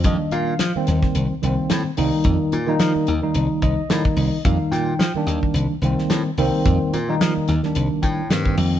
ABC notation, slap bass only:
X:1
M:4/4
L:1/16
Q:"Swing 16ths" 1/4=109
K:Cdor
V:1 name="Slap bass" clef=bass
F,, z B,,2 F, z E,, z C,, z C,, z A,, z C,, z | F,, z B,,2 F, z E,, z C,, z C,, z A,, z C,, z | F,, z B,,2 F, z E,, z C,, z C,, z A,, z C,, z | F,, z B,,2 F, z E,, z C,, z A,,2 G,,2 F,,2 |]